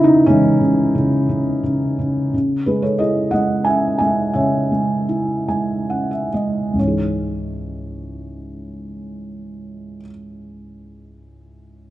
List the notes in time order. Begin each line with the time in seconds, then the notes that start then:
Already playing: C#3 D#3 E3 B3 D#4 E4
0.04 D#4
0.26 C#3 E3 G#3 C#4
0.61 C#3
0.95 C#3
1.29 C#3
1.63 C#3
1.99 C#3
2.34 C#3
2.66 G#3 G#4 B4
2.82 A4 C#5
2.98 E4 G#4 D#5
3.31 G#3 D#5 F#5
3.65 C#4 E5 G#5
3.98 G#3 E5 G#5
4.33 C#3 C#5 E5
4.72 G#3
5.09 E4
5.48 G#3 G#5
5.90 C#4 F#5
6.11 E5
6.34 G#3 D#5
6.74 C#2 G#2
6.79 E3 C#4 C#5
6.84 D#4 G#4